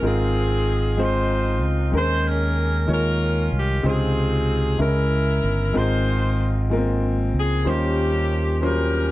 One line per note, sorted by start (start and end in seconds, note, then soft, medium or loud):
0.01 1.62 G#1 medium
0.01 0.94 G#2 medium
0.01 0.71 G#3 medium
0.01 0.72 C4 medium
0.01 0.72 F4 medium
0.01 0.73 A#4 medium
0.06 0.96 C4 medium
0.06 0.96 F4 medium
0.06 1.00 G#4 medium
0.97 1.67 G#3 medium
0.97 1.67 C4 medium
0.97 1.68 F4 medium
0.97 1.68 C5 medium
1.02 1.91 D#4 medium
1.02 1.91 F4 medium
1.02 1.64 C5 medium
1.62 1.91 C#2 medium
1.92 2.85 D#2 loud
1.92 2.85 D#3 medium
1.92 2.62 G#3 medium
1.92 2.62 C#4 medium
1.92 2.63 D#4 medium
1.92 2.63 A#4 medium
1.97 2.87 G#4 medium
1.97 2.25 C5 loud
2.27 2.86 C#4 medium
2.27 2.90 A#4 loud
2.86 3.48 D#2 medium
2.86 3.80 D#3 medium
2.86 3.57 G#3 medium
2.86 3.57 D#4 medium
2.86 3.57 F4 medium
2.86 3.58 C#5 medium
2.92 3.82 C#4 medium
2.92 3.82 F4 medium
2.92 3.50 A#4 loud
3.52 3.82 C2 medium
3.56 3.86 G4 medium
3.83 4.76 C#2 medium
3.83 4.53 C3 medium
3.83 4.76 C#3 medium
3.83 4.77 C4 medium
3.83 4.53 D#4 medium
3.83 4.54 F4 medium
3.83 4.77 F4 medium
3.83 4.54 C5 medium
3.88 4.78 G#4 medium
4.78 5.39 C#2 loud
4.78 5.71 C#3 medium
4.78 5.48 G#3 medium
4.78 5.48 C#4 medium
4.78 5.49 E4 medium
4.78 5.49 A#4 medium
4.82 5.72 E4 medium
4.82 5.77 A#4 loud
5.44 5.73 G1 loud
5.73 7.31 G#1 loud
5.73 6.66 G#2 medium
5.73 6.43 G#3 medium
5.73 6.44 C4 medium
5.73 6.44 F4 medium
5.73 6.44 A#4 medium
5.77 6.68 D#4 medium
5.77 6.68 F4 medium
5.77 6.48 C5 medium
6.70 7.39 G#3 medium
6.70 6.77 A#3 medium
6.70 7.40 F4 medium
6.70 7.41 A#4 medium
6.77 7.43 C4 medium
7.34 7.64 C#2 medium
7.39 7.67 G#4 medium
7.64 9.12 D#2 loud
7.64 8.58 D#3 medium
7.64 8.35 G3 medium
7.64 8.59 A#3 medium
7.64 8.35 C#4 medium
7.64 8.59 C#4 medium
7.64 8.35 F4 medium
7.64 8.36 C5 medium
7.70 8.63 G4 medium
8.61 8.68 F#3 medium
8.61 9.12 C#4 medium
8.61 9.12 F4 medium
8.61 9.12 G4 medium
8.61 9.12 A#4 loud
8.61 9.12 C5 medium
8.67 9.12 G3 medium